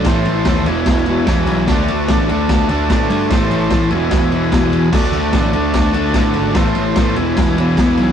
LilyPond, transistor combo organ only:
\new Staff \with { instrumentName = "Transistor combo organ" } { \time 4/4 \key d \dorian \tempo 4 = 148 <c'' e'' a''>4. <b' e'' gis''>2~ <b' e'' gis''>8 | <a' d'' fis''>1 | <a' c'' e''>4. <gis' b' e''>2~ <gis' b' e''>8 | <a' d'' fis''>1 |
<a' c'' e''>4. <gis' b' e''>2~ <gis' b' e''>8 | }